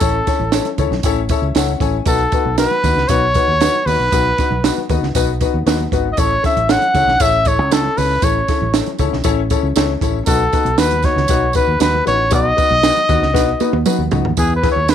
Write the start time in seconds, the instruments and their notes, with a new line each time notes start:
Already playing: trumpet A4
0.00 fingered electric bass A1, upright piano C#4 E4 A4 C#5, kick, closed hi-hat, tambourine, muted conga
0.27 upright piano C#4 E4 A4 C#5, kick, snare, closed hi-hat, tambourine
0.39 fingered electric bass A1, high conga
0.52 upright piano C#4 E4 A4 C#5, snare, closed hi-hat, tambourine
0.65 closed hi-hat, high conga
0.78 fingered electric bass C#2, upright piano C#4 E4 A4 C#5, kick, closed hi-hat, tambourine, low conga
0.91 fingered electric bass B1, snare, low conga
1.03 fingered electric bass A1, upright piano C#4 E4 A4 C#5, kick, closed hi-hat, tambourine
1.29 upright piano C#4 E4 A4 C#5 E5, kick, closed hi-hat, tambourine
1.42 fingered electric bass C#2
1.55 fingered electric bass C#2, upright piano C#4 E4 A4 C#5 F#5, snare, closed hi-hat, tambourine, muted conga, high conga
1.69 high conga
1.80 fingered electric bass A1, upright piano C#4 E4 A4 C#5 G#5, kick, closed hi-hat, tambourine, low conga
2.06 fingered electric bass B1, upright piano B3 D#4 F#4 B4, trumpet A4, kick, closed hi-hat, tambourine
2.20 muted conga
2.32 upright piano B3 D#4 F#4 B4, kick, closed hi-hat, tambourine
2.45 fingered electric bass B1, high conga
2.58 upright piano B3 D#4 F#4 B4, trumpet B4, snare, closed hi-hat, tambourine
2.71 muted conga, high conga
2.84 fingered electric bass D#2, upright piano B3 D#4 F#4 B4, kick, snare, closed hi-hat, tambourine, low conga
2.96 fingered electric bass C#2, snare, low conga
3.08 fingered electric bass B1, upright piano B3 D#4 F#4 B4, trumpet C#5, kick, closed hi-hat, tambourine, muted conga
3.24 muted conga
3.34 upright piano B3 D#4 F#4 B4, kick, closed hi-hat, tambourine
3.48 fingered electric bass D#2
3.61 upright piano B3 D#4 F#4 B4, snare, closed hi-hat, tambourine, muted conga, high conga
3.76 high conga
3.86 fingered electric bass D#2, upright piano B3 D#4 F#4 B4, trumpet B4, open hi-hat, tambourine, low conga
3.99 fingered electric bass B1
4.12 fingered electric bass B1, upright piano B3 D#4 F#4 B4, kick, closed hi-hat, tambourine
4.26 muted conga
4.38 upright piano B3 D#4 F#4 B4, kick, snare, closed hi-hat, tambourine
4.50 fingered electric bass B1, high conga
4.64 upright piano B3 D#4 F#4 B4, snare, closed hi-hat, tambourine, muted conga
4.78 muted conga, high conga
4.89 fingered electric bass D#2, upright piano B3 D#4 F#4 B4, kick, closed hi-hat, tambourine, low conga
5.01 fingered electric bass C#2, snare, low conga
5.15 fingered electric bass B1, upright piano B3 D#4 F#4 B4, kick, closed hi-hat, tambourine, muted conga
5.29 muted conga
5.41 upright piano B3 D#4 F#4 B4, kick, closed hi-hat, tambourine
5.54 fingered electric bass D#2
5.66 fingered electric bass D#2, upright piano B3 D#4 F#4 B4, snare, closed hi-hat, tambourine, muted conga, high conga
5.81 high conga
5.92 fingered electric bass G#1, upright piano B3 D#4 F#4 B4, kick, closed hi-hat, tambourine, low conga
6.12 trumpet D#5
6.17 fingered electric bass A1, upright piano C#4 E4 A4 C#5, trumpet C#5, kick, closed hi-hat, tambourine
6.31 muted conga
6.43 upright piano C#4 E4 A4 C#5, trumpet E5, kick, snare, closed hi-hat, tambourine
6.57 fingered electric bass A1, closed hi-hat, high conga
6.69 upright piano C#4 E4 A4 C#5, trumpet F#5, snare, closed hi-hat, tambourine, muted conga
6.82 closed hi-hat, muted conga, high conga
6.94 fingered electric bass C#2, upright piano C#4 E4 A4 C#5, kick, snare, closed hi-hat, tambourine, low conga
7.07 fingered electric bass B1, snare, low conga
7.20 fingered electric bass A1, upright piano C#4 E4 A4 C#5, trumpet E5, kick, closed hi-hat, tambourine
7.45 upright piano C#4 E4 A4 C#5, trumpet C#5, kick, closed hi-hat, tambourine
7.59 fingered electric bass C#2
7.71 upright piano C#4 E4 A4 C#5, trumpet A4, snare, closed hi-hat, tambourine, muted conga, high conga
7.85 muted conga, high conga
7.97 fingered electric bass C#2, upright piano C#4 E4 A4 C#5, trumpet B4, open hi-hat, tambourine, low conga
8.22 fingered electric bass A1, upright piano C#4 E4 A4 C#5, trumpet C#5, kick, closed hi-hat, tambourine, muted conga
8.48 upright piano C#4 E4 A4 C#5, kick, snare, closed hi-hat, tambourine
8.61 fingered electric bass A1, high conga
8.74 upright piano C#4 E4 A4 C#5, snare, closed hi-hat, tambourine, muted conga
8.86 closed hi-hat, muted conga, high conga
8.98 fingered electric bass C#2, upright piano C#4 E4 A4 C#5, kick, closed hi-hat, tambourine, low conga
9.12 fingered electric bass B1, snare, low conga
9.24 fingered electric bass A1, upright piano C#4 E4 A4 C#5, kick, closed hi-hat, tambourine, muted conga
9.39 muted conga
9.50 upright piano C#4 E4 A4 C#5, kick, closed hi-hat, tambourine
9.63 fingered electric bass C#2
9.76 fingered electric bass C#2, upright piano C#4 E4 A4 C#5, snare, closed hi-hat, tambourine, muted conga, high conga
9.90 muted conga, high conga
10.01 fingered electric bass A1, upright piano C#4 E4 A4 C#5, kick, closed hi-hat, tambourine, low conga
10.26 fingered electric bass B1, upright piano B3 D#4 F#4 B4, trumpet A4, kick, closed hi-hat, tambourine
10.41 muted conga
10.53 upright piano B3 D#4 F#4 B4, kick, closed hi-hat, tambourine
10.65 fingered electric bass B1, closed hi-hat, high conga
10.78 fingered electric bass D#2, upright piano B3 D#4 F#4 B4, trumpet B4, snare, closed hi-hat, tambourine, muted conga
10.91 closed hi-hat, muted conga, high conga
11.03 upright piano B3 D#4 F#4 B4, trumpet C#5, kick, snare, closed hi-hat, tambourine, low conga
11.16 fingered electric bass C#2, snare, low conga
11.28 fingered electric bass B1, upright piano B3 D#4 F#4 B4, kick, closed hi-hat, tambourine
11.44 muted conga
11.53 upright piano B3 D#4 F#4 B4, trumpet B4, kick, closed hi-hat, tambourine
11.68 fingered electric bass D#2
11.80 fingered electric bass D#2, upright piano B3 D#4 F#4 B4, trumpet B4, snare, closed hi-hat, tambourine, muted conga, high conga
11.95 muted conga, high conga
12.05 fingered electric bass A1, upright piano B3 D#4 F#4 B4, trumpet C#5, closed hi-hat, tambourine, low conga
12.31 fingered electric bass B1, upright piano B3 D#4 F#4 B4, trumpet D#5, kick, closed hi-hat, tambourine
12.46 muted conga
12.57 upright piano B3 D#4 F#4 B4, kick, closed hi-hat, tambourine
12.70 fingered electric bass B1, high conga
12.82 upright piano B3 D#4 F#4 B4, snare, closed hi-hat, tambourine
12.96 closed hi-hat, high conga
13.09 fingered electric bass D#2, upright piano B3 D#4 F#4 B4, kick, snare, closed hi-hat, tambourine, low conga
13.21 fingered electric bass C#2, snare, low conga
13.34 fingered electric bass B1, upright piano B3 D#4 F#4 B4, kick, snare, tambourine
13.49 muted conga
13.60 upright piano B3 D#4 F#4 B4, muted fingered electric bass stroke, high tom, tambourine
13.73 fingered electric bass D#2, high tom
13.86 upright piano B3 D#4 F#4 B4, mid tom, tambourine, high conga
13.98 fingered electric bass D#2, muted conga, high conga
14.11 fingered electric bass C#2, upright piano B3 D#4 F#4 B4, floor tom, tambourine, low conga
14.25 fingered electric bass D#2, floor tom
14.37 fingered electric bass E2, upright piano B3 E4 G#4 B4, trumpet G#4, kick, closed hi-hat, tambourine, muted conga
14.51 muted conga
14.56 trumpet B4
14.63 upright piano B3 E4 G#4 B4, kick, snare, closed hi-hat, tambourine
14.72 trumpet C#5
14.76 fingered electric bass D#2, high conga
14.88 upright piano B3 E4 G#4 B4, trumpet B4, snare, closed hi-hat, tambourine